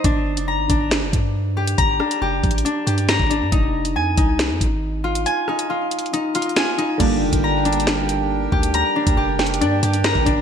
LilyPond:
<<
  \new Staff \with { instrumentName = "Harmonium" } { \time 4/4 \key g \phrygian \tempo 4 = 138 r1 | r1 | r1 | r1 |
<d' g' bes' g''>1~ | <d' g' bes' g''>1 | }
  \new Staff \with { instrumentName = "Harp" } { \time 4/4 \key g \phrygian d'4 bes''8 d'2 g'8 | bes''8 d'8 g'4 d'8 g'8 bes''8 d'8 | ees'4 aes''8 ees'2 f'8 | aes''8 ees'8 f'4 ees'8 f'8 aes''8 ees'8 |
d'4 bes''8 d'2 g'8 | bes''8 d'8 g'4 d'8 g'8 bes''8 d'8 | }
  \new Staff \with { instrumentName = "Synth keys" } { \time 4/4 \key g \phrygian << { r1 | r1 | r1 | r1 |
r1 | r4. g''8 d''4 bes'4 | } \\ { r1 | r1 | r1 | r1 |
<d g bes d'>1~ | <d g bes d'>1 | } >> }
  \new Staff \with { instrumentName = "808-style bass" } { \clef bass \time 4/4 \key g \phrygian g,,8. f,,16. g,,16. g,,8. f,,16 g,4. | g,,8 r8 f,,8 bes,,8 r8 g,8. g,,8 g,16 | f,,4 f,8 c,8. f,16 aes,,4. | r1 |
g,,8 f,,16 g,,2~ g,,8. d,8~ | d,16 r8 d,16 f,,4 g,8 g,8. g,,16 g,,8 | }
  \new DrumStaff \with { instrumentName = "Drums" } \drummode { \time 4/4 <hh bd>8. hh16 r8 <hh bd>8 <hh sn>8 <hh bd>8 r8. hh16 | <hh bd>8 ss16 hh16 \tuplet 3/2 { r16 r16 r16 <hh bd>16 hh16 hh16 } hh8 hh16 hh16 <hh sn>16 bd16 hh8 | <hh bd>8. hh16 r8 <hh bd>8 <hh sn>8 <hh bd>8 r8. hh16 | hh8 ss16 hh16 \tuplet 3/2 { r16 r16 r16 hh16 hh16 hh16 hh16 r16 r16 hh16 hh16 hh16 } <hh sn>8 hh8 |
<cymc hh bd>8. <hh bd>16 \tuplet 3/2 { r16 r16 r16 hh16 hh16 hh16 } <hh sn>8 hh8 r8 bd16 hh16 | hh8. <hh bd>16 \tuplet 3/2 { r16 r16 r16 <hh sn>16 hh16 hh16 } hh8 hh16 hh16 <hh sn>16 bd16 <hh bd>8 | }
>>